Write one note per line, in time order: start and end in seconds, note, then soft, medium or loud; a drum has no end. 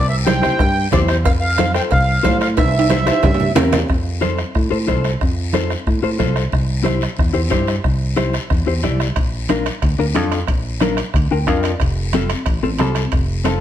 0.00 0.47 C2 medium
0.09 0.16 E5 medium
0.26 0.33 E4 medium
0.26 0.32 G4 medium
0.26 0.33 C5 medium
0.26 0.88 G5 loud
0.26 bombo rim medium
0.26 cowbell medium
0.26 high conga medium
0.26 short guiro medium
0.42 0.60 E4 medium
0.42 0.60 G4 medium
0.42 0.60 C5 medium
0.42 bombo rim medium
0.42 low conga medium
0.42 short guiro medium
0.59 0.86 G2 loud
0.59 bombo low medium
0.59 bombo rim medium
0.59 cowbell medium
0.59 high conga soft
0.59 long guiro medium
0.92 1.26 E2 medium
0.92 1.16 E4 medium
0.92 1.16 G4 medium
0.92 1.16 C5 medium
0.92 0.99 D5 medium
0.92 bombo low medium
0.92 bombo rim medium
0.92 cowbell medium
0.92 high conga medium
0.92 low conga medium
0.92 low timbale medium
0.92 short guiro medium
1.08 1.16 C5 medium
1.08 bombo rim medium
1.08 short guiro medium
1.24 1.78 F2 medium
1.24 1.32 F5 medium
1.24 bombo low medium
1.24 bombo rim medium
1.24 cowbell loud
1.24 high conga soft
1.24 long guiro medium
1.40 1.72 F5 loud
1.58 1.64 F4 medium
1.58 1.65 A4 medium
1.58 1.65 C5 medium
1.58 bombo rim medium
1.58 cowbell medium
1.58 high conga medium
1.58 short guiro medium
1.74 1.92 F4 medium
1.74 1.92 A4 medium
1.74 1.92 C5 medium
1.74 1.82 G5 loud
1.74 bombo rim medium
1.74 short guiro medium
1.91 2.18 C2 loud
1.91 2.37 F5 loud
1.91 bombo low medium
1.91 bombo rim medium
1.91 cowbell medium
1.91 high conga soft
1.91 long guiro medium
2.23 2.59 A2 loud
2.23 2.47 F4 medium
2.23 2.47 A4 medium
2.23 2.47 C5 medium
2.23 bombo low medium
2.23 bombo rim medium
2.23 cowbell medium
2.23 high conga medium
2.23 low timbale medium
2.23 short guiro medium
2.41 2.48 F5 medium
2.41 bombo rim medium
2.41 short guiro medium
2.57 3.10 C2 medium
2.57 3.52 E5 medium
2.57 bombo low medium
2.57 bombo rim medium
2.57 cowbell loud
2.57 high conga soft
2.57 high timbale medium
2.57 long guiro medium
2.68 high timbale medium
2.79 high timbale medium
2.90 2.96 E4 medium
2.90 2.96 G4 medium
2.90 2.96 C5 medium
2.90 bombo rim medium
2.90 cowbell medium
2.90 high conga medium
2.90 high timbale medium
2.90 short guiro medium
3.06 3.23 E4 medium
3.06 3.24 G4 medium
3.06 3.24 C5 medium
3.06 bombo rim medium
3.06 high conga medium
3.06 short guiro medium
3.11 high timbale medium
3.23 3.50 G2 loud
3.23 bombo low medium
3.23 bombo rim medium
3.23 cowbell medium
3.23 low conga medium
3.23 low timbale medium
3.23 long guiro medium
3.34 low timbale medium
3.40 low conga medium
3.55 3.83 E2 loud
3.55 3.79 E4 medium
3.55 3.79 G4 medium
3.55 3.79 A#4 medium
3.55 bombo rim medium
3.55 cowbell medium
3.55 low conga medium
3.55 short guiro medium
3.72 bombo rim medium
3.72 low conga medium
3.72 short guiro medium
3.78 low timbale medium
3.89 4.42 F2 medium
3.89 bombo low medium
3.89 bombo rim medium
3.89 high conga soft
3.89 long guiro medium
4.21 4.39 F4 medium
4.21 4.39 A4 medium
4.21 4.39 C5 medium
4.21 bombo rim medium
4.21 high conga medium
4.21 short guiro medium
4.38 bombo rim medium
4.38 short guiro medium
4.55 4.68 A2 medium
4.55 bombo low medium
4.55 bombo rim medium
4.55 high conga soft
4.55 long guiro medium
4.71 4.90 A2 medium
4.71 4.76 F4 medium
4.71 4.77 A4 medium
4.71 4.77 C5 medium
4.87 5.15 C2 medium
4.87 5.10 F4 medium
4.87 5.11 A4 medium
4.87 5.11 C5 medium
4.87 bombo low medium
4.87 bombo rim medium
4.87 high conga medium
4.87 short guiro medium
5.04 bombo rim medium
5.04 short guiro medium
5.21 5.74 F2 medium
5.21 bombo low medium
5.21 bombo rim medium
5.21 high conga soft
5.21 long guiro medium
5.53 5.71 F4 medium
5.53 5.71 A4 medium
5.53 5.71 C5 medium
5.53 bombo rim medium
5.53 high conga medium
5.53 short guiro medium
5.70 bombo rim medium
5.70 short guiro medium
5.87 6.00 A2 medium
5.87 bombo low medium
5.87 bombo rim medium
5.87 high conga soft
5.87 long guiro medium
6.03 6.21 A2 medium
6.03 6.09 F4 medium
6.03 6.09 A4 medium
6.03 6.09 C5 medium
6.19 6.46 C2 medium
6.19 6.42 F4 medium
6.19 6.43 A4 medium
6.19 6.42 C5 medium
6.19 bombo low medium
6.19 bombo rim medium
6.19 high conga medium
6.19 short guiro medium
6.36 bombo rim medium
6.36 short guiro medium
6.52 7.06 C2 medium
6.52 bombo low medium
6.52 bombo rim medium
6.52 high conga soft
6.52 long guiro medium
6.84 7.02 E4 medium
6.84 7.02 G4 medium
6.84 7.02 C5 medium
6.84 bombo rim medium
6.84 high conga medium
6.84 short guiro medium
7.01 bombo rim medium
7.01 short guiro medium
7.17 7.32 E2 medium
7.17 bombo low medium
7.17 bombo rim medium
7.17 high conga soft
7.17 long guiro medium
7.33 7.52 E2 medium
7.33 7.40 E4 medium
7.33 7.40 G4 medium
7.33 7.40 C5 medium
7.50 7.78 G2 medium
7.50 7.74 E4 medium
7.50 7.74 G4 medium
7.50 7.74 C5 medium
7.50 bombo low medium
7.50 bombo rim medium
7.50 high conga medium
7.50 short guiro medium
7.67 bombo rim medium
7.67 short guiro medium
7.84 8.37 C2 medium
7.84 bombo low medium
7.84 bombo rim medium
7.84 high conga soft
7.84 long guiro medium
8.16 8.34 E4 medium
8.16 8.34 G4 medium
8.16 8.35 C5 medium
8.16 bombo rim medium
8.16 high conga medium
8.16 short guiro medium
8.33 bombo rim medium
8.33 short guiro medium
8.50 8.64 E2 medium
8.50 bombo low medium
8.50 bombo rim medium
8.50 high conga soft
8.50 long guiro medium
8.67 8.86 E2 medium
8.67 8.73 E4 medium
8.67 8.73 G4 medium
8.67 8.73 C5 medium
8.83 9.10 C2 medium
8.83 9.07 E4 medium
8.83 9.07 G4 medium
8.83 9.07 D5 medium
8.83 bombo rim medium
8.83 high conga medium
8.83 short guiro medium
9.00 bombo rim medium
9.00 short guiro medium
9.16 9.69 A#1 medium
9.16 bombo low medium
9.16 bombo rim medium
9.16 high conga soft
9.16 high timbale medium
9.16 long guiro medium
9.49 9.67 D4 medium
9.49 9.67 F4 medium
9.49 9.67 A#4 medium
9.49 bombo rim medium
9.49 high conga medium
9.49 high timbale medium
9.49 short guiro medium
9.66 bombo rim medium
9.66 high timbale medium
9.66 short guiro medium
9.82 9.96 D2 medium
9.82 bombo low medium
9.82 bombo rim medium
9.82 high conga soft
9.82 high timbale medium
9.82 long guiro medium
9.98 10.16 D2 medium
9.98 10.04 D4 medium
9.98 10.05 F4 medium
9.98 10.05 A#4 medium
10.14 10.42 F2 medium
10.14 10.38 D4 medium
10.14 10.38 F4 medium
10.14 10.38 A4 medium
10.14 bombo rim medium
10.14 high conga medium
10.14 high timbale medium
10.14 short guiro medium
10.32 bombo rim medium
10.32 high timbale medium
10.32 short guiro medium
10.47 11.01 A#1 medium
10.47 bombo low medium
10.47 bombo rim medium
10.47 high conga soft
10.47 high timbale medium
10.47 long guiro medium
10.80 10.98 D4 medium
10.80 10.99 F4 medium
10.80 10.99 A#4 medium
10.80 bombo rim medium
10.80 high conga medium
10.80 high timbale medium
10.80 short guiro medium
10.97 bombo rim medium
10.97 high timbale medium
10.97 short guiro medium
11.14 11.27 D2 medium
11.14 bombo low medium
11.14 bombo rim medium
11.14 high conga soft
11.14 high timbale medium
11.14 long guiro medium
11.31 11.47 D2 medium
11.31 11.37 D4 medium
11.31 11.37 F4 medium
11.31 11.37 A#4 medium
11.31 11.46 G5 medium
11.47 11.74 F2 medium
11.47 11.70 D4 medium
11.47 11.71 F4 medium
11.47 11.71 A#4 medium
11.47 11.63 F5 medium
11.47 bombo low medium
11.47 bombo rim medium
11.47 high conga medium
11.47 high timbale medium
11.47 short guiro medium
11.63 11.79 D5 medium
11.63 bombo rim medium
11.63 high timbale medium
11.63 short guiro medium
11.80 12.33 F1 medium
11.80 bombo low medium
11.80 bombo rim medium
11.80 high conga soft
11.80 high timbale medium
11.80 long guiro medium
12.13 12.31 C4 medium
12.13 12.31 F4 medium
12.13 12.31 A4 medium
12.13 bombo rim medium
12.13 high conga medium
12.13 high timbale medium
12.13 short guiro medium
12.30 bombo rim medium
12.30 high timbale medium
12.30 short guiro medium
12.46 12.59 A1 medium
12.46 bombo low medium
12.46 bombo rim medium
12.46 high conga soft
12.46 high timbale medium
12.46 long guiro medium
12.63 12.79 A1 medium
12.63 12.69 C4 medium
12.63 12.68 F4 medium
12.63 12.69 A4 medium
12.79 13.06 C2 medium
12.79 13.02 C4 medium
12.79 13.02 F4 medium
12.79 13.03 A4 medium
12.79 bombo rim medium
12.79 high conga medium
12.79 high timbale medium
12.79 low timbale medium
12.79 short guiro medium
12.95 bombo rim medium
12.95 high timbale medium
12.95 short guiro medium
13.12 13.61 F1 medium
13.12 bombo low medium
13.12 bombo rim medium
13.12 high conga soft
13.12 high timbale medium
13.12 long guiro medium
13.44 13.61 C4 medium
13.44 13.61 F4 medium
13.44 13.61 A4 medium
13.44 bombo rim medium
13.44 high conga medium
13.44 high timbale medium
13.44 short guiro medium